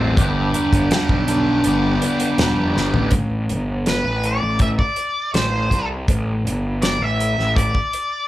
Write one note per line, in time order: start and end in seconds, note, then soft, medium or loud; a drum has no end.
0.00 0.16 A1 medium
0.00 3.20 A1 medium
0.00 3.20 E2 medium
0.00 0.17 E3 medium
0.00 0.18 G3 medium
0.00 0.17 C4 medium
0.00 0.16 E4 medium
0.00 0.14 A4 medium
0.00 0.14 C5 medium
0.00 0.14 E5 medium
0.00 0.15 G5 medium
0.17 0.51 G1 medium
0.17 2.02 G2 medium
0.17 3.10 G4 medium
0.17 3.10 B4 medium
0.17 3.10 D5 medium
0.17 3.10 G5 medium
0.17 kick loud
0.17 closed hi-hat medium
0.54 2.01 D3 medium
0.54 closed hi-hat medium
0.73 0.89 G1 medium
0.73 kick medium
0.73 closed hi-hat medium
0.91 2.37 G3 medium
0.91 snare loud
0.91 closed hi-hat medium
1.09 1.61 B1 medium
1.09 kick medium
1.28 3.12 D4 medium
1.28 closed hi-hat medium
1.64 1.98 G1 loud
1.64 2.73 B3 medium
1.64 closed hi-hat medium
2.02 3.12 D3 medium
2.02 closed hi-hat medium
2.20 closed hi-hat medium
2.38 2.55 E1 medium
2.38 3.12 G3 medium
2.38 snare loud
2.38 closed hi-hat medium
2.56 2.73 F1 medium
2.74 2.92 G1 medium
2.74 3.12 B3 medium
2.74 snare medium
2.94 3.11 A1 medium
2.94 floor tom medium
3.11 3.51 A1 loud
3.11 kick loud
3.11 closed hi-hat medium
3.49 4.01 G1 medium
3.49 closed hi-hat medium
3.86 4.25 B4 medium
3.86 snare medium
3.86 closed hi-hat medium
4.04 4.38 A1 medium
4.24 4.59 D5 medium
4.24 closed hi-hat medium
4.42 4.75 A1 medium
4.59 4.67 E5 loud
4.59 kick loud
4.59 closed hi-hat medium
4.79 5.30 D5 medium
4.79 kick medium
4.96 closed hi-hat medium
5.34 5.68 A1 medium
5.34 5.86 C5 medium
5.34 snare loud
5.34 closed hi-hat medium
5.71 6.05 C2 medium
5.71 kick medium
5.71 closed hi-hat medium
6.08 6.46 A1 loud
6.08 kick loud
6.08 closed hi-hat medium
6.44 6.96 G1 medium
6.44 closed hi-hat medium
6.82 7.02 D5 medium
6.82 snare loud
6.82 closed hi-hat medium
7.00 7.34 A1 medium
7.00 7.56 E5 loud
7.20 closed hi-hat medium
7.39 7.71 A1 medium
7.39 snare soft
7.56 8.28 D5 medium
7.56 kick loud
7.56 closed hi-hat medium
7.75 kick medium
7.93 closed hi-hat medium